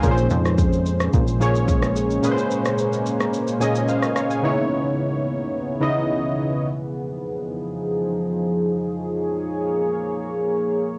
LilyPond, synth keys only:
\new Staff \with { instrumentName = "Synth keys" } { \time 4/4 \key bes \minor \tempo 4 = 109 << { <f'' aes''>16 r2. r8. | r2 r8 aes''8 <c'' ees'' f''>8 <des'' f''>16 <f'' aes''>16~ | <f'' aes''>16 r2. r8. | r1 |
r1 | } \\ { <bes, bes des' aes' bes' c''>4. r4 <bes, bes des' aes' des''>4 r8 | <bes, bes des' aes' ces'' c''>4. r4 <bes, bes des' aes' ees''>4 r8 | <des ces' ees' fes' des''>4. r4 <des ces' ees' fes' ees''>4 r8 | r1 |
r1 | } >> }